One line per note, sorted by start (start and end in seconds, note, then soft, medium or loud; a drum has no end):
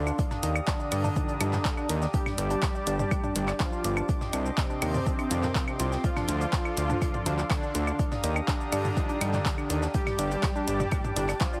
0.00 0.11 D2 loud
0.00 0.15 D3 medium
0.00 0.15 D4 medium
0.00 0.17 A4 medium
0.00 2.10 F5 medium
0.00 0.17 C6 medium
0.00 0.17 D6 medium
0.07 0.12 D4 medium
0.07 0.12 D5 medium
0.07 claves soft
0.07 shaker soft
0.19 4.05 G4 medium
0.19 0.22 D5 medium
0.19 2.12 A#5 medium
0.19 0.22 D6 medium
0.19 2.12 D#6 medium
0.19 kick loud
0.19 closed hi-hat medium
0.19 shaker soft
0.31 0.37 D4 loud
0.31 0.37 D5 medium
0.31 snare soft
0.31 mid tom medium
0.31 shaker soft
0.43 0.60 D#2 loud
0.43 0.49 D4 medium
0.43 0.49 D5 medium
0.43 closed hi-hat loud
0.43 closed hi-hat medium
0.43 shaker medium
0.56 0.59 D5 medium
0.56 0.59 D6 medium
0.56 claves medium
0.56 shaker soft
0.67 2.04 D3 medium
0.67 2.04 D4 loud
0.67 0.73 D4 loud
0.67 0.73 D5 medium
0.67 kick loud
0.67 snare loud
0.67 clap loud
0.67 closed hi-hat medium
0.67 shaker soft
0.80 0.85 D4 medium
0.80 0.85 D5 medium
0.80 shaker soft
0.92 1.09 G2 medium
0.92 0.95 D5 medium
0.92 0.95 D6 medium
0.92 closed hi-hat loud
0.92 open hi-hat medium
0.92 claves medium
0.92 shaker medium
1.04 1.10 D4 loud
1.04 1.10 D5 medium
1.04 mid tom medium
1.04 shaker soft
1.16 1.38 G2 medium
1.16 1.38 F3 medium
1.16 1.22 D4 medium
1.16 1.38 D#4 loud
1.16 1.22 D5 medium
1.16 kick loud
1.16 closed hi-hat medium
1.16 shaker soft
1.29 1.32 D5 medium
1.29 1.32 D6 medium
1.29 closed hi-hat soft
1.29 shaker soft
1.41 1.58 G2 loud
1.41 1.50 G2 medium
1.41 1.50 F3 medium
1.41 1.46 D4 loud
1.41 1.50 D#4 medium
1.41 1.46 D5 medium
1.41 closed hi-hat loud
1.41 closed hi-hat medium
1.41 claves medium
1.41 shaker medium
1.53 1.58 D4 medium
1.53 1.58 D5 medium
1.53 snare medium
1.53 clap soft
1.53 mid tom medium
1.53 shaker soft
1.65 1.68 D5 medium
1.65 1.68 D6 medium
1.65 kick loud
1.65 snare loud
1.65 clap loud
1.65 closed hi-hat medium
1.65 shaker soft
1.77 1.83 D4 loud
1.77 1.83 D5 medium
1.77 claves medium
1.77 shaker soft
1.89 2.07 D#2 loud
1.89 1.95 D4 medium
1.89 1.95 D5 medium
1.89 closed hi-hat loud
1.89 closed hi-hat medium
1.89 shaker medium
2.02 2.05 D5 medium
2.02 2.05 D6 medium
2.02 snare soft
2.02 shaker soft
2.14 3.51 G3 medium
2.14 2.19 D4 loud
2.14 3.51 G4 loud
2.14 2.19 D5 medium
2.14 4.07 D5 medium
2.14 4.07 A5 medium
2.14 7.95 D6 medium
2.14 kick loud
2.14 closed hi-hat medium
2.14 shaker soft
2.26 2.32 D4 medium
2.26 2.32 D5 medium
2.26 snare medium
2.26 mid tom medium
2.26 claves medium
2.26 shaker soft
2.38 2.55 G1 loud
2.38 2.42 D5 medium
2.38 2.42 D6 medium
2.38 closed hi-hat loud
2.38 closed hi-hat medium
2.38 shaker medium
2.50 2.56 D4 loud
2.50 2.56 D5 medium
2.50 closed hi-hat soft
2.50 shaker soft
2.62 kick loud
2.62 snare loud
2.62 clap loud
2.62 closed hi-hat medium
2.62 claves medium
2.62 shaker soft
2.75 2.78 D5 medium
2.75 2.78 D6 medium
2.75 shaker soft
2.87 3.04 G1 medium
2.87 2.93 D4 loud
2.87 2.93 D5 medium
2.87 closed hi-hat loud
2.87 closed hi-hat medium
2.87 shaker medium
2.99 3.05 D4 medium
2.99 3.05 D5 medium
2.99 mid tom medium
2.99 shaker soft
3.11 3.33 A2 medium
3.11 3.33 G3 medium
3.11 3.33 D4 medium
3.11 3.15 D5 medium
3.11 3.15 D6 medium
3.11 kick loud
3.11 closed hi-hat medium
3.11 claves medium
3.11 shaker soft
3.24 3.29 D4 medium
3.24 3.29 D5 medium
3.24 mid tom medium
3.24 shaker soft
3.36 3.53 G1 loud
3.36 3.45 A2 medium
3.36 3.45 G3 medium
3.36 3.41 D4 medium
3.36 3.45 D4 medium
3.36 3.41 D5 medium
3.36 closed hi-hat loud
3.36 closed hi-hat medium
3.36 shaker medium
3.48 3.51 D5 medium
3.48 3.51 D6 medium
3.48 clap soft
3.48 claves medium
3.48 shaker soft
3.60 4.05 F3 medium
3.60 3.66 D4 loud
3.60 4.05 F4 medium
3.60 3.66 D5 medium
3.60 kick loud
3.60 snare loud
3.60 clap loud
3.60 closed hi-hat medium
3.60 shaker soft
3.72 3.78 D4 medium
3.72 3.78 D5 medium
3.72 shaker soft
3.84 4.02 G1 medium
3.84 3.88 D5 medium
3.84 3.88 D6 medium
3.84 closed hi-hat medium
3.84 closed hi-hat loud
3.84 shaker medium
3.97 4.02 D4 loud
3.97 4.02 D5 medium
3.97 claves medium
3.97 shaker soft
4.09 4.14 D4 medium
4.09 6.02 G4 medium
4.09 4.14 D5 medium
4.09 6.02 D#5 medium
4.09 7.95 C6 medium
4.09 kick loud
4.09 closed hi-hat medium
4.09 shaker soft
4.21 4.25 D5 medium
4.21 4.25 D6 medium
4.21 snare soft
4.21 mid tom medium
4.21 shaker soft
4.33 4.50 C2 loud
4.33 4.39 D4 loud
4.33 4.39 D5 medium
4.33 closed hi-hat medium
4.33 closed hi-hat loud
4.33 claves medium
4.33 shaker medium
4.45 4.51 D4 medium
4.45 4.51 D5 medium
4.45 shaker soft
4.57 5.94 C3 medium
4.57 5.94 C4 loud
4.57 4.61 D5 medium
4.57 4.61 D6 medium
4.57 kick loud
4.57 snare loud
4.57 clap loud
4.57 closed hi-hat medium
4.57 shaker soft
4.70 4.75 D4 loud
4.70 4.75 D5 medium
4.70 shaker soft
4.82 4.99 D#2 medium
4.82 4.88 D4 medium
4.82 4.88 D5 medium
4.82 closed hi-hat loud
4.82 open hi-hat medium
4.82 claves medium
4.82 shaker medium
4.94 4.98 D5 medium
4.94 4.98 D6 medium
4.94 mid tom medium
4.94 shaker soft
5.06 5.28 C3 medium
5.06 5.28 D#3 medium
5.06 5.12 D4 loud
5.06 5.28 D4 medium
5.06 5.12 D5 medium
5.06 kick loud
5.06 closed hi-hat medium
5.06 shaker soft
5.19 5.24 D4 medium
5.19 5.24 D5 medium
5.19 closed hi-hat soft
5.19 claves medium
5.19 shaker soft
5.31 5.48 F2 medium
5.31 5.40 C3 medium
5.31 5.40 D#3 medium
5.31 5.40 D4 medium
5.31 5.36 F4 medium
5.31 5.36 F5 medium
5.31 closed hi-hat medium
5.31 closed hi-hat loud
5.31 shaker medium
5.43 5.51 A#4 medium
5.43 5.51 A#5 medium
5.43 snare soft
5.43 clap soft
5.43 mid tom medium
5.43 shaker soft
5.55 5.59 F4 loud
5.55 5.59 F5 medium
5.55 kick loud
5.55 snare loud
5.55 clap loud
5.55 closed hi-hat loud
5.55 shaker soft
5.68 5.73 D4 medium
5.68 5.73 D5 medium
5.68 claves medium
5.68 shaker soft
5.79 5.97 C2 loud
5.79 5.85 F4 loud
5.79 5.85 F5 medium
5.79 closed hi-hat medium
5.79 closed hi-hat loud
5.79 shaker medium
5.92 5.97 C4 loud
5.92 5.97 C5 medium
5.92 snare medium
5.92 shaker soft
6.04 7.41 F3 medium
6.04 7.41 F4 loud
6.04 7.97 A4 medium
6.04 6.07 D5 medium
6.04 9.90 F5 medium
6.04 6.07 D6 medium
6.04 kick loud
6.04 closed hi-hat medium
6.04 shaker soft
6.16 6.22 D4 loud
6.16 6.22 D5 medium
6.16 snare medium
6.16 mid tom medium
6.16 claves medium
6.16 shaker soft
6.28 6.46 D2 loud
6.28 6.34 D4 medium
6.28 6.34 D5 medium
6.28 closed hi-hat medium
6.28 closed hi-hat loud
6.28 shaker medium
6.41 6.44 D5 medium
6.41 6.44 D6 medium
6.41 closed hi-hat soft
6.41 shaker soft
6.53 6.58 D4 loud
6.53 kick loud
6.53 snare loud
6.53 clap loud
6.53 closed hi-hat medium
6.53 shaker soft
6.65 6.71 D4 medium
6.65 6.71 D5 medium
6.65 claves medium
6.65 shaker soft
6.77 6.94 D2 medium
6.77 6.81 D5 medium
6.77 6.81 D6 medium
6.77 closed hi-hat medium
6.77 closed hi-hat loud
6.77 shaker medium
6.90 6.95 D4 loud
6.90 6.95 D5 medium
6.90 mid tom medium
6.90 shaker soft
7.02 7.23 C3 medium
7.02 7.23 F3 medium
7.02 7.23 D4 medium
7.02 kick loud
7.02 closed hi-hat loud
7.02 claves medium
7.02 shaker soft
7.14 7.17 D5 medium
7.14 7.17 D6 medium
7.14 mid tom medium
7.14 shaker soft
7.26 7.43 D2 loud
7.26 7.35 C3 medium
7.26 7.35 F3 medium
7.26 7.32 D4 loud
7.26 7.35 D4 loud
7.26 7.32 D5 medium
7.26 closed hi-hat loud
7.26 closed hi-hat medium
7.26 shaker medium
7.38 7.44 D4 medium
7.38 7.44 D5 medium
7.38 clap soft
7.38 shaker soft
7.50 7.95 D3 medium
7.50 7.95 D4 medium
7.50 7.54 D5 medium
7.50 7.54 D6 medium
7.50 kick loud
7.50 snare loud
7.50 clap loud
7.50 closed hi-hat loud
7.50 claves medium
7.50 shaker soft
7.63 7.68 D4 loud
7.63 7.68 D5 medium
7.63 shaker soft
7.75 7.92 D2 medium
7.75 7.80 D4 medium
7.75 7.80 D5 medium
7.75 closed hi-hat loud
7.75 closed hi-hat medium
7.75 shaker medium
7.87 7.90 D5 medium
7.87 7.90 D6 medium
7.87 claves medium
7.87 shaker soft
7.99 8.05 D4 loud
7.99 9.92 G4 medium
7.99 8.05 D5 medium
7.99 9.92 A#5 medium
7.99 9.92 D#6 medium
7.99 kick loud
7.99 closed hi-hat medium
7.99 shaker soft
8.12 8.17 D4 medium
8.12 8.17 D5 medium
8.12 snare medium
8.12 mid tom medium
8.12 shaker soft
8.24 8.41 D#2 loud
8.24 8.27 D5 medium
8.24 8.27 D6 medium
8.24 closed hi-hat medium
8.24 closed hi-hat loud
8.24 shaker medium
8.36 8.41 D4 loud
8.36 8.41 D5 medium
8.36 claves medium
8.36 shaker soft
8.47 9.85 D3 medium
8.47 9.85 D4 loud
8.47 8.54 D4 medium
8.47 8.54 D5 medium
8.47 kick loud
8.47 snare loud
8.47 clap loud
8.47 closed hi-hat medium
8.47 shaker soft
8.60 8.64 D5 medium
8.60 8.64 D6 medium
8.60 shaker soft
8.72 8.90 G2 medium
8.72 8.78 D4 loud
8.72 8.78 D5 medium
8.72 closed hi-hat loud
8.72 open hi-hat medium
8.72 claves medium
8.72 shaker medium
8.85 8.90 D4 medium
8.85 8.90 D5 medium
8.85 mid tom medium
8.85 shaker soft
8.97 9.18 G2 medium
8.97 9.18 F3 medium
8.97 9.18 D#4 loud
8.97 9.00 D5 medium
8.97 9.00 D6 medium
8.97 kick loud
8.97 closed hi-hat medium
8.97 shaker soft
9.09 9.15 D4 loud
9.09 9.15 D5 medium
9.09 closed hi-hat soft
9.09 shaker soft
9.21 9.38 G2 loud
9.21 9.30 G2 medium
9.21 9.30 F3 medium
9.21 9.27 D4 medium
9.21 9.30 D#4 medium
9.21 9.27 D5 medium
9.21 closed hi-hat loud
9.21 closed hi-hat medium
9.21 claves medium
9.21 shaker medium
9.33 9.37 D5 medium
9.33 9.37 D6 medium
9.33 snare soft
9.33 clap soft
9.33 mid tom medium
9.33 shaker soft
9.46 9.51 D4 loud
9.46 kick loud
9.46 snare loud
9.46 clap loud
9.46 closed hi-hat loud
9.46 shaker soft
9.58 9.63 D4 medium
9.58 9.63 D5 medium
9.58 claves medium
9.58 shaker soft
9.70 9.87 D#2 loud
9.70 9.73 D5 medium
9.70 9.73 D6 medium
9.70 closed hi-hat loud
9.70 closed hi-hat medium
9.70 shaker medium
9.82 9.88 D4 loud
9.82 9.88 D5 medium
9.82 snare medium
9.82 shaker soft
9.94 11.31 G3 medium
9.94 10.00 D4 medium
9.94 11.31 G4 loud
9.94 11.60 G4 medium
9.94 10.00 D5 medium
9.94 11.60 D5 medium
9.94 11.60 A5 medium
9.94 11.60 D6 medium
9.94 kick loud
9.94 closed hi-hat medium
9.94 shaker soft
10.06 10.10 D5 medium
10.06 10.10 D6 medium
10.06 snare medium
10.06 mid tom medium
10.06 claves medium
10.06 shaker soft
10.19 10.36 G1 loud
10.19 10.24 D4 loud
10.19 10.24 D5 medium
10.19 closed hi-hat medium
10.19 closed hi-hat loud
10.19 shaker medium
10.31 10.37 D4 medium
10.31 10.37 D5 medium
10.31 closed hi-hat soft
10.31 shaker soft
10.43 kick loud
10.43 snare loud
10.43 clap loud
10.43 closed hi-hat medium
10.43 claves medium
10.43 shaker soft
10.56 10.61 D4 loud
10.56 10.61 D5 medium
10.56 shaker soft
10.68 10.85 G1 medium
10.68 10.73 D4 medium
10.68 10.73 D5 medium
10.68 closed hi-hat medium
10.68 shaker medium
10.80 10.83 D5 medium
10.80 10.83 D6 medium
10.80 mid tom medium
10.80 shaker soft
10.91 11.13 A2 medium
10.91 11.13 G3 medium
10.91 10.97 D4 loud
10.91 11.13 D4 loud
10.91 10.97 D5 medium
10.91 kick loud
10.91 closed hi-hat medium
10.91 claves medium
10.91 shaker soft
11.04 11.10 D4 medium
11.04 11.10 D5 soft
11.04 mid tom medium
11.04 shaker soft
11.16 11.33 G1 loud
11.16 11.25 A2 medium
11.16 11.25 G3 medium
11.16 11.25 D4 loud
11.16 11.20 D5 medium
11.16 11.20 D6 medium
11.16 closed hi-hat loud
11.16 closed hi-hat medium
11.16 shaker medium
11.29 11.34 D4 loud
11.29 11.34 D5 medium
11.29 clap soft
11.29 closed hi-hat soft
11.29 claves medium
11.29 shaker soft
11.40 11.60 F3 medium
11.40 11.46 D4 medium
11.40 11.60 F4 medium
11.40 11.46 D5 medium
11.40 kick loud
11.40 snare loud
11.40 clap loud
11.40 closed hi-hat medium
11.40 shaker soft
11.53 11.56 D5 medium
11.53 11.56 D6 medium
11.53 shaker soft